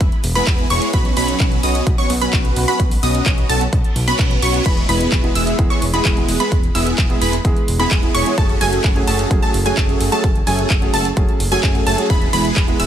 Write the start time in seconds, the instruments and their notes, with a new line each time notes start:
0.01 analog synth bass E1, kick, closed hi-hat
0.12 closed hi-hat
0.24 analog synth bass E1, open hi-hat
0.35 supersaw synth G#3 B3 E4 G#4 B4, synth pluck B5, closed hi-hat
0.47 analog synth bass E1, kick, clap, closed hi-hat
0.59 closed hi-hat
0.70 analog synth bass E1, supersaw synth G#3 B3 E4 G#4 C#5, synth pluck C#6, open hi-hat
0.82 closed hi-hat
0.93 analog synth bass B1, supersaw synth F#3 B3 C#4 F#4 B4, synth pluck B5, kick, closed hi-hat
1.05 closed hi-hat
1.17 analog synth bass B1, supersaw synth F#3 B3 C#4 F#4 B4, synth pluck B5, open hi-hat
1.28 closed hi-hat
1.40 analog synth bass B1, kick, clap, closed hi-hat
1.52 closed hi-hat
1.63 analog synth bass B1, supersaw synth F#3 B3 C#4 F#4 D#5, synth pluck D#6, open hi-hat
1.75 closed hi-hat
1.87 analog synth bass B1, kick, closed hi-hat
1.98 supersaw synth F#3 B3 C#4 F#4 C#5, synth pluck C#6, closed hi-hat
2.10 analog synth bass B1, open hi-hat
2.21 supersaw synth F#3 B3 C#4 F#4 B4, synth pluck B5, closed hi-hat
2.33 analog synth bass B1, kick, clap, closed hi-hat
2.45 closed hi-hat
2.56 analog synth bass B1, open hi-hat
2.68 supersaw synth F#3 B3 C#4 F#4 B4, synth pluck B5, closed hi-hat
2.80 analog synth bass B1, kick, closed hi-hat
2.91 open hi-hat
3.03 analog synth bass B1, supersaw synth F#3 B3 C#4 F#4 D#5, synth pluck D#6, open hi-hat
3.15 closed hi-hat
3.26 analog synth bass B1, kick, clap, closed hi-hat
3.38 closed hi-hat
3.49 analog synth bass B1, supersaw synth F#3 B3 C#4 F#4 A4, synth pluck A5, open hi-hat
3.61 closed hi-hat
3.73 analog synth bass B1, kick, closed hi-hat, reverse cymbal
3.84 closed hi-hat
3.96 analog synth bass B1, open hi-hat
4.07 supersaw synth F#3 B3 C#4 F#4 B4, synth pluck B5, closed hi-hat
4.19 analog synth bass B1, kick, clap, closed hi-hat
4.31 closed hi-hat
4.42 analog synth bass B1, supersaw synth F#3 B3 C#4 F#4 C#5, synth pluck C#6, open hi-hat
4.54 closed hi-hat
4.66 analog synth bass E1, supersaw synth G#3 B3 E4 G#4 B4, synth pluck B5, kick, closed hi-hat, crash
4.77 closed hi-hat
4.88 analog synth bass E1, grand piano E3 G#3 B3 G#4, supersaw synth G#3 B3 E4 G#4 B4, synth pluck B5, open hi-hat
5.01 closed hi-hat
5.12 analog synth bass E1, kick, clap, closed hi-hat
5.23 grand piano E3 G#3 B3 G#4, closed hi-hat
5.35 analog synth bass E1, supersaw synth G#3 B3 E4 G#4 E5, synth pluck E6, open hi-hat
5.47 closed hi-hat
5.58 analog synth bass E1, grand piano E3 G#3 B3 G#4, kick, closed hi-hat
5.70 supersaw synth G#3 B3 E4 G#4 C#5, synth pluck C#6, closed hi-hat
5.82 analog synth bass E1, open hi-hat
5.93 grand piano E3 G#3 B3 G#4, supersaw synth G#3 B3 E4 G#4 B4, synth pluck B5, closed hi-hat
6.05 analog synth bass E1, kick, clap, closed hi-hat
6.16 grand piano E3 G#3 B3 G#4, closed hi-hat
6.28 analog synth bass E1, open hi-hat
6.40 grand piano E3 G#3 B3 G#4, supersaw synth G#3 B3 E4 G#4 B4, synth pluck B5, closed hi-hat
6.52 analog synth bass E1, kick, closed hi-hat
6.63 closed hi-hat
6.75 analog synth bass E1, grand piano E3 G#3 B3 G#4, supersaw synth G#3 B3 E4 G#4 E5, synth pluck E6, open hi-hat
6.87 closed hi-hat
6.98 analog synth bass E1, kick, clap, closed hi-hat
7.09 grand piano E3 G#3 B3 G#4, closed hi-hat
7.21 analog synth bass E1, supersaw synth G#3 B3 E4 G#4 B4, synth pluck B5, open hi-hat
7.33 closed hi-hat
7.44 analog synth bass E1, grand piano E3 G#3 B3 G#4, kick, closed hi-hat
7.57 closed hi-hat
7.68 analog synth bass E1, open hi-hat
7.79 grand piano E3 G#3 B3 G#4, supersaw synth G#3 B3 E4 G#4 B4, synth pluck B5, closed hi-hat
7.91 analog synth bass E1, kick, clap, closed hi-hat
8.02 grand piano E3 G#3 B3 G#4, closed hi-hat
8.14 analog synth bass E1, supersaw synth G#3 B3 E4 G#4 C#5, synth pluck C#6, open hi-hat
8.26 grand piano E3 G#3 B3 G#4, closed hi-hat
8.38 analog synth bass F#1, supersaw synth A3 C#4 F#4 G#4 A4, synth pluck A5, kick, closed hi-hat
8.49 closed hi-hat
8.61 analog synth bass F#1, grand piano F#3 A3 C#4 G#4, supersaw synth A3 C#4 F#4 G#4 A4, synth pluck G#5, open hi-hat
8.73 closed hi-hat
8.84 analog synth bass F#1, kick, clap, closed hi-hat
8.95 grand piano F#3 A3 C#4 G#4, closed hi-hat
9.07 analog synth bass F#1, supersaw synth A3 C#4 F#4 G#4 A4, synth pluck A5, open hi-hat
9.19 closed hi-hat
9.30 analog synth bass F#1, grand piano F#3 A3 C#4 G#4, kick, closed hi-hat
9.42 supersaw synth A3 C#4 F#4 G#4 A4, synth pluck A5, closed hi-hat
9.54 analog synth bass F#1, open hi-hat
9.65 grand piano F#3 A3 C#4 G#4, supersaw synth A3 C#4 F#4 G#4 A4, synth pluck G#5, closed hi-hat
9.77 analog synth bass F#1, kick, clap, closed hi-hat
9.88 grand piano F#3 A3 C#4 G#4, closed hi-hat
10.00 analog synth bass F#1, open hi-hat
10.12 grand piano F#3 A3 C#4 G#4, supersaw synth A3 C#4 F#4 G#4 A4, synth pluck A5, closed hi-hat
10.24 analog synth bass F#1, kick, closed hi-hat
10.35 closed hi-hat
10.46 analog synth bass F#1, grand piano F#3 A3 C#4 G#4, supersaw synth A3 C#4 F#4 G#4 A4, synth pluck G#5, open hi-hat
10.59 closed hi-hat
10.70 analog synth bass F#1, kick, clap, closed hi-hat
10.81 grand piano F#3 A3 C#4 G#4, closed hi-hat
10.94 analog synth bass F#1, supersaw synth A3 C#4 F#4 G#4 A4, synth pluck A5, open hi-hat
11.05 closed hi-hat
11.16 analog synth bass F#1, grand piano F#3 A3 C#4 G#4, kick, closed hi-hat
11.29 closed hi-hat
11.40 analog synth bass F#1, open hi-hat
11.51 grand piano F#3 A3 C#4 G#4, supersaw synth A3 C#4 F#4 G#4 A4, synth pluck G#5, closed hi-hat
11.63 analog synth bass F#1, kick, clap, closed hi-hat
11.74 grand piano F#3 A3 C#4 G#4, closed hi-hat
11.87 analog synth bass F#1, supersaw synth A3 C#4 F#4 G#4 A4, synth pluck A5, open hi-hat
11.98 grand piano F#3 A3 C#4 G#4, closed hi-hat
12.10 analog synth bass E1, supersaw synth G#3 B3 E4 G#4 B4, synth pluck B5, kick, closed hi-hat
12.22 closed hi-hat
12.33 analog synth bass E1, grand piano E3 G#3 B3 G#4, supersaw synth G#3 B3 E4 G#4 B4, synth pluck B5, open hi-hat, ride
12.45 closed hi-hat
12.56 analog synth bass E1, kick, clap, closed hi-hat
12.67 grand piano E3 G#3 B3 G#4, closed hi-hat
12.80 analog synth bass E1, supersaw synth G#3 B3 E4 G#4 E5, synth pluck E6, open hi-hat, ride